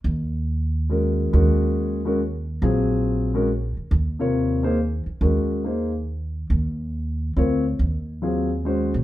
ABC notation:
X:1
M:3/4
L:1/8
Q:"Swing" 1/4=139
K:Ebdor
V:1 name="Grand piano"
z4 [A,DGB]2 | [A,DGB]3 [A,DGB] z2 | [G,CFA]3 [A,DGB] z2 | z [C,FBd]2 [B,EAc] z2 |
[A,DGB]2 [B,EAc] z3 | z4 [CFBd] z | z2 [G,CFA] z [A,DGc] z |]
V:2 name="Upright bass" clef=bass
E,,6 | E,,6 | B,,,4- B,,, z | E,,4- E,, z |
E,,6 | E,,4 =D,,2 | E,,4- E,, B,, |]